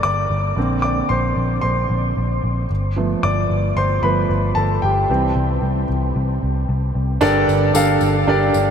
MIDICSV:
0, 0, Header, 1, 4, 480
1, 0, Start_track
1, 0, Tempo, 531444
1, 756, Time_signature, 4, 2, 24, 8
1, 7863, End_track
2, 0, Start_track
2, 0, Title_t, "Grand piano"
2, 0, Program_c, 0, 0
2, 0, Control_c, 0, 64, 127
2, 0, Note_on_c, 0, 55, 46
2, 0, Note_on_c, 0, 58, 48
2, 0, Note_on_c, 0, 69, 48
2, 0, Note_on_c, 0, 70, 55
2, 0, Note_on_c, 0, 74, 66
2, 0, Note_on_c, 0, 81, 63
2, 0, Note_on_c, 0, 82, 68
2, 0, Note_on_c, 0, 86, 85
2, 29, Note_off_c, 0, 86, 0
2, 29, Note_on_c, 0, 86, 103
2, 44, Note_off_c, 0, 74, 0
2, 44, Note_on_c, 0, 74, 69
2, 509, Note_on_c, 0, 50, 51
2, 518, Note_off_c, 0, 58, 0
2, 518, Note_on_c, 0, 58, 43
2, 525, Note_on_c, 0, 60, 54
2, 527, Note_off_c, 0, 82, 0
2, 528, Control_c, 0, 64, 0
2, 533, Note_off_c, 0, 70, 0
2, 533, Note_off_c, 0, 81, 0
2, 534, Note_off_c, 0, 55, 0
2, 534, Note_off_c, 0, 69, 0
2, 690, Control_c, 0, 64, 127
2, 724, Note_off_c, 0, 74, 0
2, 729, Note_off_c, 0, 86, 0
2, 742, Note_on_c, 0, 86, 81
2, 760, Note_on_c, 0, 74, 58
2, 981, Note_off_c, 0, 74, 0
2, 984, Note_on_c, 0, 84, 78
2, 997, Note_off_c, 0, 86, 0
2, 1004, Note_on_c, 0, 72, 59
2, 1445, Note_off_c, 0, 84, 0
2, 1447, Note_off_c, 0, 72, 0
2, 1458, Note_on_c, 0, 84, 84
2, 1479, Note_on_c, 0, 72, 54
2, 2392, Note_off_c, 0, 84, 0
2, 2398, Note_off_c, 0, 50, 0
2, 2402, Note_off_c, 0, 58, 0
2, 2402, Note_off_c, 0, 72, 0
2, 2405, Note_off_c, 0, 60, 0
2, 2450, Control_c, 0, 64, 0
2, 2610, Control_c, 0, 64, 127
2, 2676, Note_on_c, 0, 53, 49
2, 2685, Note_on_c, 0, 57, 43
2, 2689, Note_on_c, 0, 59, 50
2, 2920, Note_on_c, 0, 86, 95
2, 2928, Note_on_c, 0, 74, 66
2, 3361, Note_off_c, 0, 53, 0
2, 3366, Note_off_c, 0, 57, 0
2, 3367, Note_off_c, 0, 59, 0
2, 3369, Note_off_c, 0, 74, 0
2, 3402, Note_on_c, 0, 84, 90
2, 3413, Note_off_c, 0, 86, 0
2, 3414, Note_on_c, 0, 72, 65
2, 3630, Note_off_c, 0, 72, 0
2, 3639, Note_on_c, 0, 83, 87
2, 3641, Note_on_c, 0, 53, 44
2, 3645, Note_on_c, 0, 57, 41
2, 3647, Note_off_c, 0, 84, 0
2, 3649, Note_on_c, 0, 59, 49
2, 3652, Note_on_c, 0, 71, 60
2, 3855, Note_off_c, 0, 53, 0
2, 3858, Note_off_c, 0, 57, 0
2, 3860, Note_off_c, 0, 59, 0
2, 4092, Note_off_c, 0, 71, 0
2, 4109, Note_on_c, 0, 81, 79
2, 4129, Note_on_c, 0, 69, 57
2, 4133, Note_off_c, 0, 83, 0
2, 4164, Note_off_c, 0, 81, 0
2, 4182, Note_off_c, 0, 69, 0
2, 4355, Note_on_c, 0, 79, 79
2, 4376, Note_on_c, 0, 67, 59
2, 4600, Note_on_c, 0, 52, 47
2, 4608, Note_on_c, 0, 55, 44
2, 4610, Control_c, 0, 64, 0
2, 4611, Note_on_c, 0, 60, 57
2, 4744, Control_c, 0, 64, 127
2, 5280, Note_off_c, 0, 79, 0
2, 5291, Note_off_c, 0, 67, 0
2, 6483, Note_off_c, 0, 52, 0
2, 6487, Note_off_c, 0, 55, 0
2, 6488, Note_off_c, 0, 60, 0
2, 6510, Note_on_c, 0, 62, 104
2, 6512, Note_on_c, 0, 67, 90
2, 6517, Note_on_c, 0, 50, 71
2, 6518, Note_on_c, 0, 69, 90
2, 6519, Note_on_c, 0, 43, 73
2, 6524, Note_on_c, 0, 70, 94
2, 6525, Note_on_c, 0, 74, 117
2, 6529, Control_c, 0, 64, 0
2, 6710, Control_c, 0, 64, 127
2, 6955, Note_off_c, 0, 62, 0
2, 6956, Note_off_c, 0, 67, 0
2, 6959, Note_off_c, 0, 69, 0
2, 6962, Note_off_c, 0, 70, 0
2, 6963, Note_off_c, 0, 74, 0
2, 6992, Note_on_c, 0, 62, 78
2, 6997, Note_on_c, 0, 67, 75
2, 7000, Note_on_c, 0, 69, 87
2, 7007, Note_on_c, 0, 70, 76
2, 7007, Note_on_c, 0, 77, 104
2, 7201, Note_off_c, 0, 50, 0
2, 7202, Note_off_c, 0, 43, 0
2, 7436, Note_off_c, 0, 62, 0
2, 7438, Note_off_c, 0, 67, 0
2, 7440, Note_off_c, 0, 69, 0
2, 7443, Note_off_c, 0, 70, 0
2, 7444, Note_off_c, 0, 77, 0
2, 7474, Note_on_c, 0, 62, 87
2, 7479, Note_on_c, 0, 67, 88
2, 7483, Note_on_c, 0, 69, 74
2, 7486, Note_on_c, 0, 70, 83
2, 7492, Note_on_c, 0, 74, 104
2, 7863, Note_off_c, 0, 62, 0
2, 7863, Note_off_c, 0, 67, 0
2, 7863, Note_off_c, 0, 69, 0
2, 7863, Note_off_c, 0, 70, 0
2, 7863, Note_off_c, 0, 74, 0
2, 7863, End_track
3, 0, Start_track
3, 0, Title_t, "Picked electric bass"
3, 0, Program_c, 1, 34
3, 34, Note_on_c, 1, 31, 67
3, 231, Note_off_c, 1, 31, 0
3, 272, Note_on_c, 1, 31, 76
3, 470, Note_off_c, 1, 31, 0
3, 515, Note_on_c, 1, 34, 80
3, 909, Note_off_c, 1, 34, 0
3, 995, Note_on_c, 1, 34, 90
3, 1192, Note_off_c, 1, 34, 0
3, 1232, Note_on_c, 1, 34, 88
3, 1431, Note_off_c, 1, 34, 0
3, 1475, Note_on_c, 1, 34, 73
3, 1672, Note_off_c, 1, 34, 0
3, 1716, Note_on_c, 1, 34, 80
3, 1913, Note_off_c, 1, 34, 0
3, 1959, Note_on_c, 1, 34, 81
3, 2155, Note_off_c, 1, 34, 0
3, 2201, Note_on_c, 1, 34, 80
3, 2396, Note_off_c, 1, 34, 0
3, 2442, Note_on_c, 1, 31, 73
3, 2834, Note_off_c, 1, 31, 0
3, 2922, Note_on_c, 1, 31, 94
3, 3117, Note_off_c, 1, 31, 0
3, 3161, Note_on_c, 1, 31, 94
3, 3357, Note_off_c, 1, 31, 0
3, 3399, Note_on_c, 1, 31, 87
3, 3595, Note_off_c, 1, 31, 0
3, 3635, Note_on_c, 1, 31, 85
3, 3833, Note_off_c, 1, 31, 0
3, 3880, Note_on_c, 1, 31, 81
3, 4076, Note_off_c, 1, 31, 0
3, 4118, Note_on_c, 1, 31, 77
3, 4315, Note_off_c, 1, 31, 0
3, 4362, Note_on_c, 1, 31, 91
3, 4557, Note_off_c, 1, 31, 0
3, 4605, Note_on_c, 1, 36, 86
3, 4799, Note_off_c, 1, 36, 0
3, 4838, Note_on_c, 1, 36, 95
3, 5035, Note_off_c, 1, 36, 0
3, 5076, Note_on_c, 1, 36, 86
3, 5273, Note_off_c, 1, 36, 0
3, 5321, Note_on_c, 1, 36, 71
3, 5517, Note_off_c, 1, 36, 0
3, 5562, Note_on_c, 1, 36, 90
3, 5757, Note_off_c, 1, 36, 0
3, 5806, Note_on_c, 1, 36, 78
3, 5999, Note_off_c, 1, 36, 0
3, 6042, Note_on_c, 1, 36, 88
3, 6237, Note_off_c, 1, 36, 0
3, 6280, Note_on_c, 1, 36, 80
3, 6476, Note_off_c, 1, 36, 0
3, 6518, Note_on_c, 1, 31, 92
3, 6715, Note_off_c, 1, 31, 0
3, 6763, Note_on_c, 1, 31, 98
3, 6958, Note_off_c, 1, 31, 0
3, 6996, Note_on_c, 1, 31, 105
3, 7194, Note_off_c, 1, 31, 0
3, 7237, Note_on_c, 1, 31, 92
3, 7434, Note_off_c, 1, 31, 0
3, 7476, Note_on_c, 1, 31, 102
3, 7673, Note_off_c, 1, 31, 0
3, 7719, Note_on_c, 1, 31, 87
3, 7863, Note_off_c, 1, 31, 0
3, 7863, End_track
4, 0, Start_track
4, 0, Title_t, "Drums"
4, 6513, Note_on_c, 9, 54, 41
4, 6604, Note_off_c, 9, 54, 0
4, 6764, Note_on_c, 9, 54, 31
4, 6854, Note_off_c, 9, 54, 0
4, 6998, Note_on_c, 9, 54, 97
4, 7088, Note_off_c, 9, 54, 0
4, 7232, Note_on_c, 9, 54, 42
4, 7322, Note_off_c, 9, 54, 0
4, 7715, Note_on_c, 9, 54, 55
4, 7806, Note_off_c, 9, 54, 0
4, 7863, End_track
0, 0, End_of_file